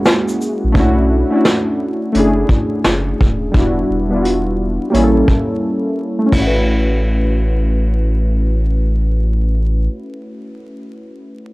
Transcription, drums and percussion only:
0.05 snare medium
0.05 closed hi-hat medium
0.05 shaker medium
0.28 shaker soft
0.42 shaker medium
0.75 kick loud
0.75 closed hi-hat medium
1.45 snare medium
1.45 closed hi-hat medium
2.15 closed hi-hat medium
2.49 kick medium
2.84 snare loud
2.84 closed hi-hat medium
3.21 kick medium
3.54 kick loud
3.54 closed hi-hat medium
4.25 closed hi-hat medium
4.94 closed hi-hat medium
5.28 kick medium
6.32 kick medium
6.32 crash medium

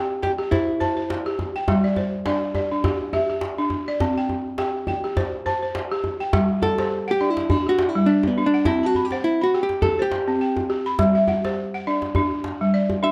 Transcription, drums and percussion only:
0.23 djembe tone medium
0.52 djembe slap medium
0.52 djembe bass medium
0.68 djembe slap soft
0.81 djembe tone medium
0.97 djembe slap soft
1.10 djembe slap medium
1.26 djembe slap soft
1.39 djembe slap soft
1.39 djembe tone medium
1.55 djembe slap soft
1.68 djembe slap medium
1.68 djembe bass medium
1.96 djembe slap soft
1.96 djembe tone medium
2.13 djembe slap soft
2.26 djembe slap medium
2.55 djembe tone medium
2.84 djembe slap medium
2.84 djembe bass medium
3.00 djembe slap soft
3.13 djembe tone medium
3.29 djembe slap soft
3.41 djembe slap medium
3.57 djembe slap soft
3.70 djembe slap soft
3.70 djembe tone medium
3.87 djembe slap soft
4.00 djembe slap medium
4.00 djembe bass medium
4.29 djembe tone medium
4.58 djembe slap medium
4.87 djembe slap soft
4.87 djembe tone medium
5.03 djembe slap soft
5.17 djembe slap medium
5.17 djembe bass medium
5.46 djembe tone medium
5.62 djembe slap soft
5.75 djembe slap medium
5.92 djembe slap soft
6.04 djembe slap soft
6.04 djembe tone medium
6.33 djembe slap medium
6.33 djembe bass medium
6.62 djembe slap soft
6.62 djembe tone medium
6.78 djembe slap medium
7.20 djembe slap soft
7.37 djembe slap medium
7.50 djembe slap soft
7.50 djembe tone medium
7.50 djembe bass medium
7.79 djembe slap medium
8.23 djembe slap medium
8.23 djembe tone soft
8.37 djembe slap soft
8.65 djembe slap medium
8.65 djembe bass medium
8.95 djembe slap soft
8.95 djembe tone medium
9.11 djembe slap soft
9.53 djembe slap soft
9.69 djembe slap medium
9.82 djembe slap soft
9.82 djembe tone medium
9.82 djembe bass medium
10.12 djembe slap medium
10.57 djembe slap soft
10.57 djembe tone medium
10.70 djembe slap soft
10.99 djembe slap medium
10.99 djembe bass medium
11.28 djembe slap soft
11.28 djembe tone medium
11.44 djembe slap medium
11.86 djembe slap soft
12.02 djembe slap medium
12.15 djembe slap soft
12.15 djembe tone medium
12.15 djembe bass medium
12.44 djembe slap medium
12.90 djembe slap medium
12.90 djembe tone medium
13.03 djembe slap soft

